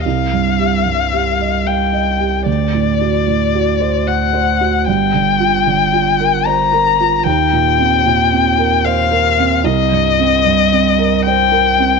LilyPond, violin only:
\new Staff \with { instrumentName = "Violin" } { \time 3/4 \key c \dorian \tempo 4 = 75 f''2 g''4 | d''2 fis''4 | g''2 bes''4 | g''2 f''4 |
ees''2 g''4 | }